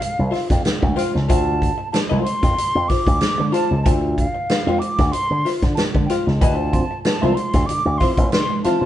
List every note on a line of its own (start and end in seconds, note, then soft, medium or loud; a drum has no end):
0.00 0.67 F5 loud
0.00 muted hollow-body jazz guitar stroke soft
0.00 muted slap bass stroke soft
0.00 closed hi-hat loud
0.19 0.31 C2 loud
0.31 0.48 F4 medium
0.31 0.47 C5 medium
0.31 0.46 E5 medium
0.31 snare soft
0.31 open hi-hat medium
0.47 0.62 F2 loud
0.47 muted hollow-body jazz guitar stroke medium
0.47 kick loud
0.47 snare soft
0.47 closed hi-hat medium
0.65 muted slap bass stroke medium
0.65 snare loud
0.65 closed hi-hat medium
0.81 0.94 D2 medium
0.81 muted hollow-body jazz guitar stroke medium
0.81 kick loud
0.96 1.16 F4 medium
0.96 1.13 C5 loud
0.96 1.13 F5 loud
0.96 1.03 G5 loud
0.96 snare soft
0.96 closed hi-hat medium
1.13 1.27 C#2 loud
1.13 muted hollow-body jazz guitar stroke soft
1.13 snare soft
1.27 1.69 D2 loud
1.27 1.59 F4 medium
1.27 1.59 C5 medium
1.27 1.59 E5 medium
1.27 1.89 A5 loud
1.27 kick loud
1.27 closed hi-hat medium
1.62 kick medium
1.62 closed hi-hat medium
1.78 muted hollow-body jazz guitar stroke soft
1.92 2.00 A5 loud
1.92 muted hollow-body jazz guitar stroke soft
1.92 snare loud
1.92 closed hi-hat medium
2.09 2.23 C2 medium
2.09 2.24 F4 medium
2.09 2.24 C5 medium
2.09 2.25 E5 medium
2.22 2.90 C6 loud
2.22 muted hollow-body jazz guitar stroke soft
2.26 closed hi-hat medium
2.43 2.55 F2 medium
2.43 muted hollow-body jazz guitar stroke soft
2.43 kick loud
2.43 snare soft
2.43 closed hi-hat medium
2.58 muted slap bass stroke soft
2.58 muted hollow-body jazz guitar stroke soft
2.58 closed hi-hat loud
2.75 2.87 F2 loud
2.88 3.05 F4 medium
2.88 3.06 C5 medium
2.88 3.06 E5 medium
2.88 3.54 D6 loud
2.88 kick loud
2.88 snare soft
2.88 open hi-hat medium
3.07 3.19 D2 medium
3.07 muted hollow-body jazz guitar stroke medium
3.07 kick loud
3.07 closed hi-hat medium
3.21 snare loud
3.21 closed hi-hat medium
3.38 3.51 D3 medium
3.38 muted hollow-body jazz guitar stroke medium
3.52 3.72 F4 medium
3.52 3.70 C5 medium
3.52 3.70 F5 medium
3.52 3.82 A5 loud
3.52 snare soft
3.52 closed hi-hat medium
3.71 3.83 C#2 medium
3.71 muted hollow-body jazz guitar stroke soft
3.83 4.25 D2 loud
3.83 4.15 F4 medium
3.83 4.15 C5 medium
3.83 4.16 E5 medium
3.83 3.90 A5 medium
3.83 kick loud
3.83 closed hi-hat loud
4.15 4.81 F5 loud
4.15 kick medium
4.15 closed hi-hat medium
4.35 muted hollow-body jazz guitar stroke soft
4.49 muted hollow-body jazz guitar stroke soft
4.49 snare loud
4.49 closed hi-hat medium
4.66 4.79 F2 medium
4.66 4.81 F4 medium
4.66 4.82 C5 medium
4.66 4.83 E5 medium
4.79 5.13 D6 loud
4.79 muted hollow-body jazz guitar stroke soft
4.79 closed hi-hat medium
4.98 5.11 D2 medium
4.98 muted hollow-body jazz guitar stroke medium
4.98 kick loud
4.98 snare soft
4.98 closed hi-hat medium
5.12 5.50 C6 loud
5.12 muted hollow-body jazz guitar stroke soft
5.12 closed hi-hat loud
5.31 5.43 D3 medium
5.45 5.61 F4 medium
5.45 5.61 C5 medium
5.45 5.61 E5 medium
5.45 snare soft
5.45 open hi-hat medium
5.62 5.75 D3 loud
5.62 muted hollow-body jazz guitar stroke soft
5.62 kick loud
5.62 snare soft
5.62 closed hi-hat medium
5.75 5.82 A5 loud
5.75 snare loud
5.75 closed hi-hat medium
5.95 6.07 D3 medium
5.95 muted hollow-body jazz guitar stroke soft
5.95 kick loud
6.06 6.29 F4 medium
6.06 6.14 G5 medium
6.06 snare soft
6.06 closed hi-hat medium
6.10 6.27 C5 medium
6.10 6.26 F5 medium
6.27 6.39 C#2 medium
6.27 muted hollow-body jazz guitar stroke medium
6.27 snare soft
6.38 6.81 D2 loud
6.38 6.53 D3 medium
6.38 6.53 E4 medium
6.38 6.54 B4 medium
6.38 7.00 A5 loud
6.38 kick loud
6.38 closed hi-hat loud
6.43 6.55 D#5 medium
6.53 6.71 F4 medium
6.53 6.71 C5 medium
6.53 6.72 E5 medium
6.73 6.85 F3 medium
6.73 6.85 C4 medium
6.73 kick medium
6.73 closed hi-hat medium
6.91 muted hollow-body jazz guitar stroke soft
7.03 7.36 A5 loud
7.03 muted hollow-body jazz guitar stroke soft
7.03 snare loud
7.03 closed hi-hat medium
7.21 7.34 C2 medium
7.21 7.33 E3 medium
7.21 7.33 F3 medium
7.21 7.33 C4 medium
7.21 7.38 F4 medium
7.21 7.38 C5 medium
7.21 7.39 E5 medium
7.35 7.68 C6 loud
7.35 muted hollow-body jazz guitar stroke soft
7.35 closed hi-hat medium
7.53 7.66 D2 loud
7.53 7.65 D3 medium
7.53 muted hollow-body jazz guitar stroke medium
7.53 kick loud
7.53 snare soft
7.53 closed hi-hat medium
7.66 7.81 D3 medium
7.66 7.99 D6 loud
7.66 muted slap bass stroke soft
7.66 closed hi-hat loud
7.71 muted hollow-body jazz guitar stroke soft
7.85 7.98 D2 medium
7.98 8.13 E3 medium
7.98 8.13 F3 medium
7.98 8.13 C4 medium
7.98 8.16 F4 medium
7.98 8.17 C5 medium
7.98 8.31 C6 medium
7.98 kick loud
7.98 snare soft
7.98 open hi-hat medium
8.02 8.17 E5 medium
8.17 8.30 A1 loud
8.17 8.24 F3 soft
8.17 8.24 C4 soft
8.17 muted hollow-body jazz guitar stroke soft
8.17 kick loud
8.17 closed hi-hat medium
8.31 8.45 D3 medium
8.31 8.62 C6 loud
8.31 snare loud
8.31 closed hi-hat medium
8.50 muted hollow-body jazz guitar stroke soft
8.64 8.77 E3 medium
8.64 8.77 F3 medium
8.64 8.77 C4 medium
8.64 8.84 F4 medium
8.64 8.82 C5 loud
8.64 8.82 F5 medium
8.64 8.86 A5 medium
8.64 muted slap bass stroke medium
8.64 snare soft
8.64 closed hi-hat medium
8.81 8.86 A2 medium
8.81 8.86 F3 soft
8.81 8.86 C4 soft
8.81 muted hollow-body jazz guitar stroke medium